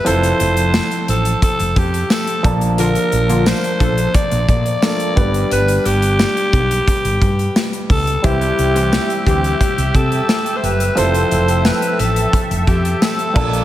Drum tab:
CC |----------------|----------------|----------------|----------------|
HH |xxxx-xxxxxxx-xxx|xxxx-xxxxxxx-xxx|xxxx-xxxxxxx-xox|xxxx-xxxxxxx-xxx|
TB |----x-------x---|----x-------x---|----x-------x---|----x-------x---|
SD |----o-------o---|----o-------o---|----o-------o---|----o-------o---|
BD |--------o-o---o-|------o-o-o---o-|------o-o-o---o-|o-----o-o-o-----|

CC |--------------x-|
HH |xxxx-xxxxxxx-x-x|
TB |----x-------x---|
SD |----o-------o---|
BD |--------o-o---o-|